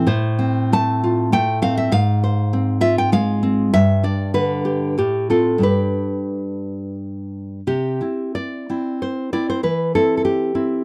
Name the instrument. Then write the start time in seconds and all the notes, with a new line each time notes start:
nylon-string guitar
0.07 A2 C5
0.39 C4
0.73 A3 A5
1.04 F4
1.32 A3 G5
1.62 C4 F5
1.77 E5
1.92 G#2 F5
2.24 C5
2.53 C4
2.81 F4 E5
2.98 G5
3.12 G#3 F5
3.43 C4
3.74 G2 E5
4.03 D4 D5
4.34 D3 B4
4.65 G4
4.98 A2 G4
5.30 C4 F4 A4
5.58 G2 D4 G4
5.63 B4
7.67 C3 G4
8.01 C4 E4
8.35 D5
8.70 C4 E4
9.02 C5
9.33 C4 E4 D5
9.50 C5
9.63 E3 B4
9.95 C4 E4 A4
10.17 A4
10.25 G4
10.55 C4 E4